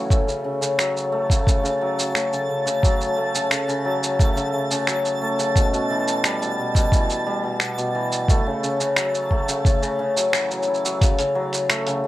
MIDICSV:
0, 0, Header, 1, 4, 480
1, 0, Start_track
1, 0, Tempo, 681818
1, 73, Time_signature, 4, 2, 24, 8
1, 8500, End_track
2, 0, Start_track
2, 0, Title_t, "Synth texture"
2, 0, Program_c, 0, 99
2, 66, Note_on_c, 0, 93, 80
2, 70, Note_on_c, 0, 81, 87
2, 7759, Note_off_c, 0, 93, 0
2, 7761, Note_off_c, 0, 81, 0
2, 8500, End_track
3, 0, Start_track
3, 0, Title_t, "Hammered dulcimer"
3, 0, Program_c, 1, 15
3, 0, Note_on_c, 1, 49, 94
3, 0, Note_on_c, 1, 52, 92
3, 0, Note_on_c, 1, 54, 66
3, 0, Note_on_c, 1, 57, 70
3, 0, Note_on_c, 1, 61, 86
3, 72, Note_off_c, 1, 57, 0
3, 75, Note_on_c, 1, 57, 90
3, 108, Note_off_c, 1, 49, 0
3, 108, Note_off_c, 1, 52, 0
3, 108, Note_off_c, 1, 54, 0
3, 192, Note_on_c, 1, 49, 70
3, 304, Note_off_c, 1, 49, 0
3, 312, Note_on_c, 1, 49, 70
3, 422, Note_off_c, 1, 49, 0
3, 430, Note_on_c, 1, 49, 88
3, 550, Note_on_c, 1, 54, 93
3, 787, Note_off_c, 1, 57, 0
3, 790, Note_on_c, 1, 57, 100
3, 906, Note_off_c, 1, 49, 0
3, 915, Note_on_c, 1, 49, 80
3, 948, Note_off_c, 1, 54, 0
3, 1026, Note_off_c, 1, 49, 0
3, 1034, Note_on_c, 1, 49, 74
3, 1142, Note_off_c, 1, 49, 0
3, 1151, Note_on_c, 1, 49, 95
3, 1276, Note_on_c, 1, 54, 91
3, 1510, Note_off_c, 1, 57, 0
3, 1513, Note_on_c, 1, 57, 88
3, 1628, Note_off_c, 1, 49, 0
3, 1637, Note_on_c, 1, 49, 73
3, 1668, Note_off_c, 1, 54, 0
3, 1744, Note_off_c, 1, 49, 0
3, 1752, Note_on_c, 1, 49, 69
3, 1863, Note_off_c, 1, 49, 0
3, 1871, Note_on_c, 1, 49, 92
3, 1988, Note_on_c, 1, 54, 96
3, 2226, Note_off_c, 1, 57, 0
3, 2229, Note_on_c, 1, 57, 98
3, 2305, Note_off_c, 1, 61, 0
3, 2344, Note_off_c, 1, 49, 0
3, 2352, Note_on_c, 1, 49, 68
3, 2388, Note_off_c, 1, 54, 0
3, 2461, Note_off_c, 1, 49, 0
3, 2469, Note_on_c, 1, 49, 76
3, 2583, Note_off_c, 1, 49, 0
3, 2592, Note_on_c, 1, 49, 107
3, 2709, Note_on_c, 1, 54, 94
3, 2947, Note_off_c, 1, 57, 0
3, 2950, Note_on_c, 1, 57, 103
3, 3060, Note_off_c, 1, 49, 0
3, 3068, Note_on_c, 1, 49, 75
3, 3108, Note_off_c, 1, 54, 0
3, 3185, Note_off_c, 1, 49, 0
3, 3193, Note_on_c, 1, 49, 69
3, 3309, Note_off_c, 1, 49, 0
3, 3317, Note_on_c, 1, 49, 91
3, 3434, Note_on_c, 1, 54, 91
3, 3670, Note_off_c, 1, 57, 0
3, 3673, Note_on_c, 1, 57, 90
3, 3785, Note_off_c, 1, 49, 0
3, 3793, Note_on_c, 1, 49, 69
3, 3828, Note_off_c, 1, 54, 0
3, 3912, Note_on_c, 1, 47, 75
3, 3948, Note_off_c, 1, 49, 0
3, 4025, Note_off_c, 1, 47, 0
3, 4034, Note_on_c, 1, 47, 88
3, 4154, Note_on_c, 1, 52, 101
3, 4398, Note_on_c, 1, 55, 99
3, 4512, Note_off_c, 1, 47, 0
3, 4520, Note_on_c, 1, 47, 75
3, 4548, Note_off_c, 1, 52, 0
3, 4631, Note_off_c, 1, 47, 0
3, 4640, Note_on_c, 1, 47, 76
3, 4748, Note_off_c, 1, 47, 0
3, 4756, Note_on_c, 1, 47, 111
3, 4876, Note_on_c, 1, 52, 96
3, 5107, Note_off_c, 1, 55, 0
3, 5115, Note_on_c, 1, 55, 95
3, 5227, Note_off_c, 1, 47, 0
3, 5236, Note_on_c, 1, 47, 74
3, 5268, Note_off_c, 1, 52, 0
3, 5348, Note_off_c, 1, 47, 0
3, 5356, Note_on_c, 1, 47, 75
3, 5467, Note_off_c, 1, 47, 0
3, 5476, Note_on_c, 1, 47, 89
3, 5595, Note_on_c, 1, 52, 92
3, 5837, Note_off_c, 1, 57, 0
3, 5840, Note_on_c, 1, 57, 104
3, 5868, Note_off_c, 1, 47, 0
3, 5868, Note_off_c, 1, 52, 0
3, 5868, Note_off_c, 1, 55, 0
3, 5959, Note_on_c, 1, 49, 78
3, 6068, Note_off_c, 1, 49, 0
3, 6076, Note_on_c, 1, 49, 75
3, 6186, Note_off_c, 1, 49, 0
3, 6194, Note_on_c, 1, 49, 97
3, 6316, Note_on_c, 1, 54, 98
3, 6555, Note_off_c, 1, 57, 0
3, 6557, Note_on_c, 1, 57, 100
3, 6667, Note_off_c, 1, 49, 0
3, 6676, Note_on_c, 1, 49, 79
3, 6708, Note_off_c, 1, 54, 0
3, 6789, Note_off_c, 1, 49, 0
3, 6797, Note_on_c, 1, 49, 81
3, 6907, Note_off_c, 1, 49, 0
3, 6915, Note_on_c, 1, 49, 102
3, 7025, Note_off_c, 1, 49, 0
3, 7033, Note_on_c, 1, 49, 91
3, 7154, Note_on_c, 1, 54, 74
3, 7274, Note_on_c, 1, 52, 79
3, 7385, Note_off_c, 1, 54, 0
3, 7393, Note_on_c, 1, 54, 73
3, 7514, Note_on_c, 1, 64, 77
3, 7628, Note_off_c, 1, 54, 0
3, 7637, Note_on_c, 1, 54, 93
3, 7748, Note_off_c, 1, 49, 0
3, 7757, Note_on_c, 1, 49, 81
3, 7788, Note_off_c, 1, 52, 0
3, 7788, Note_off_c, 1, 54, 0
3, 7870, Note_off_c, 1, 49, 0
3, 7878, Note_on_c, 1, 49, 92
3, 7992, Note_on_c, 1, 54, 100
3, 8231, Note_off_c, 1, 57, 0
3, 8234, Note_on_c, 1, 57, 96
3, 8346, Note_off_c, 1, 49, 0
3, 8354, Note_on_c, 1, 49, 79
3, 8388, Note_off_c, 1, 54, 0
3, 8466, Note_off_c, 1, 49, 0
3, 8475, Note_on_c, 1, 49, 70
3, 8500, Note_off_c, 1, 49, 0
3, 8500, Note_off_c, 1, 57, 0
3, 8500, Note_off_c, 1, 64, 0
3, 8500, End_track
4, 0, Start_track
4, 0, Title_t, "Drums"
4, 73, Note_on_c, 9, 36, 114
4, 79, Note_on_c, 9, 82, 49
4, 144, Note_off_c, 9, 36, 0
4, 149, Note_off_c, 9, 82, 0
4, 200, Note_on_c, 9, 82, 30
4, 271, Note_off_c, 9, 82, 0
4, 438, Note_on_c, 9, 82, 62
4, 509, Note_off_c, 9, 82, 0
4, 555, Note_on_c, 9, 26, 89
4, 561, Note_on_c, 9, 82, 57
4, 625, Note_off_c, 9, 26, 0
4, 632, Note_off_c, 9, 82, 0
4, 681, Note_on_c, 9, 82, 30
4, 752, Note_off_c, 9, 82, 0
4, 914, Note_on_c, 9, 36, 94
4, 922, Note_on_c, 9, 82, 65
4, 985, Note_off_c, 9, 36, 0
4, 993, Note_off_c, 9, 82, 0
4, 1034, Note_on_c, 9, 36, 105
4, 1042, Note_on_c, 9, 82, 49
4, 1104, Note_off_c, 9, 36, 0
4, 1113, Note_off_c, 9, 82, 0
4, 1163, Note_on_c, 9, 82, 32
4, 1233, Note_off_c, 9, 82, 0
4, 1402, Note_on_c, 9, 82, 66
4, 1473, Note_off_c, 9, 82, 0
4, 1514, Note_on_c, 9, 26, 93
4, 1521, Note_on_c, 9, 82, 56
4, 1585, Note_off_c, 9, 26, 0
4, 1591, Note_off_c, 9, 82, 0
4, 1640, Note_on_c, 9, 82, 28
4, 1711, Note_off_c, 9, 82, 0
4, 1881, Note_on_c, 9, 82, 58
4, 1951, Note_off_c, 9, 82, 0
4, 1994, Note_on_c, 9, 36, 110
4, 2001, Note_on_c, 9, 82, 51
4, 2064, Note_off_c, 9, 36, 0
4, 2072, Note_off_c, 9, 82, 0
4, 2119, Note_on_c, 9, 82, 30
4, 2190, Note_off_c, 9, 82, 0
4, 2358, Note_on_c, 9, 82, 59
4, 2429, Note_off_c, 9, 82, 0
4, 2471, Note_on_c, 9, 26, 94
4, 2478, Note_on_c, 9, 82, 53
4, 2542, Note_off_c, 9, 26, 0
4, 2548, Note_off_c, 9, 82, 0
4, 2599, Note_on_c, 9, 82, 30
4, 2669, Note_off_c, 9, 82, 0
4, 2840, Note_on_c, 9, 82, 62
4, 2910, Note_off_c, 9, 82, 0
4, 2953, Note_on_c, 9, 36, 112
4, 2957, Note_on_c, 9, 82, 50
4, 3024, Note_off_c, 9, 36, 0
4, 3028, Note_off_c, 9, 82, 0
4, 3076, Note_on_c, 9, 82, 30
4, 3146, Note_off_c, 9, 82, 0
4, 3316, Note_on_c, 9, 82, 64
4, 3386, Note_off_c, 9, 82, 0
4, 3430, Note_on_c, 9, 26, 94
4, 3437, Note_on_c, 9, 82, 56
4, 3501, Note_off_c, 9, 26, 0
4, 3507, Note_off_c, 9, 82, 0
4, 3557, Note_on_c, 9, 82, 30
4, 3627, Note_off_c, 9, 82, 0
4, 3797, Note_on_c, 9, 82, 57
4, 3867, Note_off_c, 9, 82, 0
4, 3912, Note_on_c, 9, 36, 107
4, 3916, Note_on_c, 9, 82, 50
4, 3983, Note_off_c, 9, 36, 0
4, 3986, Note_off_c, 9, 82, 0
4, 4039, Note_on_c, 9, 82, 27
4, 4109, Note_off_c, 9, 82, 0
4, 4278, Note_on_c, 9, 82, 58
4, 4349, Note_off_c, 9, 82, 0
4, 4393, Note_on_c, 9, 26, 96
4, 4400, Note_on_c, 9, 82, 53
4, 4463, Note_off_c, 9, 26, 0
4, 4470, Note_off_c, 9, 82, 0
4, 4520, Note_on_c, 9, 82, 30
4, 4590, Note_off_c, 9, 82, 0
4, 4752, Note_on_c, 9, 36, 95
4, 4758, Note_on_c, 9, 82, 65
4, 4822, Note_off_c, 9, 36, 0
4, 4828, Note_off_c, 9, 82, 0
4, 4872, Note_on_c, 9, 36, 105
4, 4877, Note_on_c, 9, 82, 50
4, 4942, Note_off_c, 9, 36, 0
4, 4948, Note_off_c, 9, 82, 0
4, 4997, Note_on_c, 9, 82, 33
4, 5067, Note_off_c, 9, 82, 0
4, 5350, Note_on_c, 9, 26, 97
4, 5356, Note_on_c, 9, 82, 56
4, 5420, Note_off_c, 9, 26, 0
4, 5427, Note_off_c, 9, 82, 0
4, 5478, Note_on_c, 9, 82, 31
4, 5549, Note_off_c, 9, 82, 0
4, 5718, Note_on_c, 9, 82, 54
4, 5788, Note_off_c, 9, 82, 0
4, 5832, Note_on_c, 9, 36, 121
4, 5839, Note_on_c, 9, 82, 56
4, 5903, Note_off_c, 9, 36, 0
4, 5909, Note_off_c, 9, 82, 0
4, 6079, Note_on_c, 9, 82, 33
4, 6150, Note_off_c, 9, 82, 0
4, 6198, Note_on_c, 9, 82, 59
4, 6269, Note_off_c, 9, 82, 0
4, 6311, Note_on_c, 9, 26, 101
4, 6317, Note_on_c, 9, 82, 52
4, 6381, Note_off_c, 9, 26, 0
4, 6388, Note_off_c, 9, 82, 0
4, 6439, Note_on_c, 9, 82, 30
4, 6509, Note_off_c, 9, 82, 0
4, 6553, Note_on_c, 9, 36, 55
4, 6623, Note_off_c, 9, 36, 0
4, 6677, Note_on_c, 9, 82, 67
4, 6747, Note_off_c, 9, 82, 0
4, 6793, Note_on_c, 9, 36, 113
4, 6798, Note_on_c, 9, 82, 50
4, 6864, Note_off_c, 9, 36, 0
4, 6869, Note_off_c, 9, 82, 0
4, 6918, Note_on_c, 9, 82, 29
4, 6989, Note_off_c, 9, 82, 0
4, 7159, Note_on_c, 9, 82, 72
4, 7230, Note_off_c, 9, 82, 0
4, 7274, Note_on_c, 9, 26, 109
4, 7280, Note_on_c, 9, 82, 59
4, 7344, Note_off_c, 9, 26, 0
4, 7351, Note_off_c, 9, 82, 0
4, 7399, Note_on_c, 9, 82, 29
4, 7470, Note_off_c, 9, 82, 0
4, 7480, Note_on_c, 9, 82, 24
4, 7550, Note_off_c, 9, 82, 0
4, 7562, Note_on_c, 9, 82, 21
4, 7632, Note_off_c, 9, 82, 0
4, 7641, Note_on_c, 9, 82, 55
4, 7711, Note_off_c, 9, 82, 0
4, 7754, Note_on_c, 9, 36, 126
4, 7756, Note_on_c, 9, 42, 64
4, 7762, Note_on_c, 9, 82, 60
4, 7824, Note_off_c, 9, 36, 0
4, 7826, Note_off_c, 9, 42, 0
4, 7832, Note_off_c, 9, 82, 0
4, 7875, Note_on_c, 9, 42, 47
4, 7881, Note_on_c, 9, 82, 31
4, 7945, Note_off_c, 9, 42, 0
4, 7952, Note_off_c, 9, 82, 0
4, 8116, Note_on_c, 9, 42, 30
4, 8122, Note_on_c, 9, 82, 61
4, 8186, Note_off_c, 9, 42, 0
4, 8193, Note_off_c, 9, 82, 0
4, 8234, Note_on_c, 9, 26, 108
4, 8234, Note_on_c, 9, 42, 71
4, 8240, Note_on_c, 9, 82, 58
4, 8304, Note_off_c, 9, 26, 0
4, 8304, Note_off_c, 9, 42, 0
4, 8311, Note_off_c, 9, 82, 0
4, 8354, Note_on_c, 9, 42, 46
4, 8360, Note_on_c, 9, 82, 29
4, 8424, Note_off_c, 9, 42, 0
4, 8431, Note_off_c, 9, 82, 0
4, 8500, End_track
0, 0, End_of_file